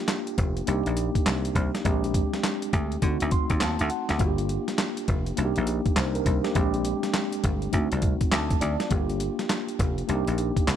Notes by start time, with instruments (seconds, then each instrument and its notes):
Already playing: tine electric piano A#3 D4 F4 G4
0.08 snare, clap, closed hi-hat
0.27 closed hi-hat
0.38 slap bass F1, kick, closed hi-hat
0.57 closed hi-hat
0.66 slap bass C2, tine electric piano A#3 D4 D#4 G4, closed hi-hat
0.86 slap bass A#1, closed hi-hat
0.97 closed hi-hat
1.15 kick, closed hi-hat
1.26 slap bass C2, snare, clap, closed hi-hat
1.45 closed hi-hat
1.55 slap bass C2, kick, closed hi-hat
1.75 snare, closed hi-hat
1.84 slap bass A#1, tine electric piano G#3 C4 D4 G4, kick, closed hi-hat
2.04 closed hi-hat
2.14 kick, closed hi-hat
2.34 snare, closed hi-hat
2.44 snare, clap, closed hi-hat
2.62 closed hi-hat
2.73 slap bass D2, kick, closed hi-hat
2.92 closed hi-hat
3.01 slap bass D3, tine electric piano A3 C4 D#4 F#4, kick, closed hi-hat
3.20 slap bass D2, closed hi-hat
3.31 tine electric piano C6, kick, closed hi-hat
3.50 slap bass D#2, kick, closed hi-hat
3.60 slap bass D#2, tine electric piano A5, snare, clap, closed hi-hat
3.79 slap bass D2, closed hi-hat
3.90 tine electric piano F#5, closed hi-hat
4.09 slap bass D2, snare, closed hi-hat
4.18 slap bass G1, tine electric piano A#3 D4 F4 F#4, kick, closed hi-hat
4.27 tine electric piano G4
4.38 closed hi-hat
4.49 closed hi-hat
4.68 snare, closed hi-hat
4.78 snare, clap, closed hi-hat
4.97 closed hi-hat
5.08 slap bass F1, kick, closed hi-hat
5.26 closed hi-hat
5.36 slap bass C2, tine electric piano A#3 D4 D#4 F#4, closed hi-hat
5.45 tine electric piano G4
5.56 slap bass A#1, closed hi-hat
5.67 closed hi-hat
5.86 kick, closed hi-hat
5.96 slap bass C2, tine electric piano D#4 C5, snare, clap, closed hi-hat
6.15 tine electric piano D4 A#4, closed hi-hat
6.26 slap bass C2, kick, closed hi-hat
6.44 tine electric piano A#3 G4, snare, closed hi-hat
6.53 slap bass A#1, tine electric piano G#3 C4 D4 G4, kick, closed hi-hat
6.74 closed hi-hat
6.85 closed hi-hat
7.03 snare, closed hi-hat
7.14 snare, clap, closed hi-hat
7.32 closed hi-hat
7.44 slap bass G1, kick, closed hi-hat
7.62 closed hi-hat
7.72 slap bass D2, tine electric piano A3 C4 D#4 F#4, kick, closed hi-hat
7.92 slap bass C2, closed hi-hat
8.02 kick, closed hi-hat
8.21 kick, closed hi-hat
8.32 slap bass D2, tine electric piano A5, snare, clap, closed hi-hat
8.50 kick, closed hi-hat
8.61 slap bass D2, tine electric piano D5, closed hi-hat
8.80 snare, closed hi-hat
8.89 slap bass G1, tine electric piano A#3 D4 F4 G4, kick, closed hi-hat
9.09 closed hi-hat
9.20 closed hi-hat
9.39 snare, closed hi-hat
9.50 snare, clap, closed hi-hat
9.69 closed hi-hat
9.79 slap bass F1, kick, closed hi-hat
9.98 closed hi-hat
10.07 slap bass C2, tine electric piano A#3 D4 D#4 G4, closed hi-hat
10.27 slap bass A#1, closed hi-hat
10.38 closed hi-hat
10.57 kick, closed hi-hat
10.68 slap bass C2, snare, clap, closed hi-hat